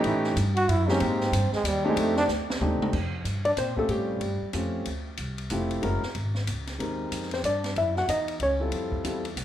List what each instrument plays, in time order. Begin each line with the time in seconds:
Already playing: grand piano E3 A3 C#4 D#4 G4
0.04 upright bass A2, trombone E4, ride
0.24 snare
0.36 upright bass G2, hi-hat pedal, ride
0.56 trombone F#4, ride
0.68 upright bass F#2, trombone E4, ride
0.88 grand piano G#3 A#3 C4 D#4 G4, trombone C#4, snare
1.00 upright bass G#2, trombone C4, ride
1.21 snare
1.32 upright bass G2, hi-hat pedal, ride
1.52 trombone G#3, muted upright bass stroke, snare
1.63 upright bass D#2, trombone G3, hi-hat pedal, ride
1.84 trombone G#3, grand piano A3 C4 D4 D#4 G4
1.96 upright bass F2, trombone A3, ride
2.16 trombone D4, snare
2.28 upright bass D2, snare, hi-hat pedal
2.50 snare
2.60 upright bass D#2, grand piano A3 C4 D4 D#4 G4, mid tom
2.80 muted upright bass stroke, mid tom
2.93 upright bass F2, kick, crash
3.24 upright bass G2, hi-hat pedal, ride
3.45 trombone D4, hollow-body jazz guitar D5, ride
3.57 upright bass A#2, trombone C4, hollow-body jazz guitar C5, snare, hi-hat pedal, ride
3.76 grand piano A3 C4 C#4 F4 G4, trombone A3, hollow-body jazz guitar A4, kick
3.88 upright bass A2, trombone G3, hollow-body jazz guitar G4, ride
4.20 upright bass G2, ride
4.41 muted upright bass stroke
4.53 upright bass F2, grand piano A3 C4 C#4 F4 G4, hi-hat pedal, ride
4.85 upright bass D2, ride
5.17 upright bass C2, hi-hat pedal, ride
5.38 ride
5.50 upright bass F1, grand piano A3 C4 E4 F4 G4, hi-hat pedal, ride
5.71 ride
5.82 upright bass F#1, grand piano G#3 C#4 E4 F#4 A#4, ride
6.03 snare
6.15 upright bass G#1, ride
6.35 snare
6.47 upright bass C#2, hi-hat pedal, ride
6.67 snare, ride
6.79 upright bass D#2, grand piano G#3 C4 D#4 G4 A#4, ride
7.11 upright bass F2, hi-hat pedal, ride
7.22 snare
7.31 trombone C4, hollow-body jazz guitar C5, snare, ride
7.43 upright bass G2, trombone D4, hollow-body jazz guitar D5, hi-hat pedal, ride
7.64 snare, ride
7.76 upright bass F#2, trombone E4, hollow-body jazz guitar E5, ride
7.95 trombone F#4, hollow-body jazz guitar F#5, snare
8.07 upright bass E2, trombone D#4, hollow-body jazz guitar D#5, hi-hat pedal, ride
8.28 ride
8.40 upright bass C#2, trombone C#4, hollow-body jazz guitar C#5, ride
8.60 grand piano G3 C4 E4 F4 A4
8.72 upright bass F2, ride
8.92 kick
9.04 upright bass E2, grand piano G3 C4 E4 F4 A4, hi-hat pedal, ride
9.25 ride
9.36 upright bass C2, hi-hat pedal, ride